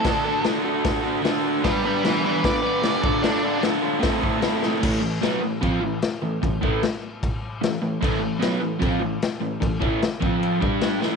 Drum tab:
CC |--------|--------|--------|x-x-x-x-|
HH |o-o-o-o-|o-o-o-o-|o-o-o-o-|--------|
SD |o-o-o-o-|o-o-o-o-|o-o-o-oo|--o---o-|
BD |o---o---|o---o--o|----oo--|o---o---|

CC |x-x-x-x-|x-x-x-x-|x-x-x-x-|
HH |--------|--------|--------|
SD |--o---o-|--o---o-|--o---oo|
BD |oo--o---|o---o---|oo-o-o--|